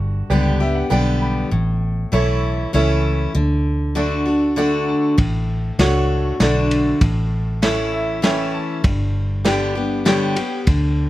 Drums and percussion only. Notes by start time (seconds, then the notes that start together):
5.18 kick, ride
5.79 snare, ride
6.40 snare, ride
6.71 ride
7.01 kick, ride
7.63 snare, ride
8.24 snare, ride
8.84 kick, ride
9.45 snare, ride
10.06 snare, ride
10.36 ride
10.67 kick, ride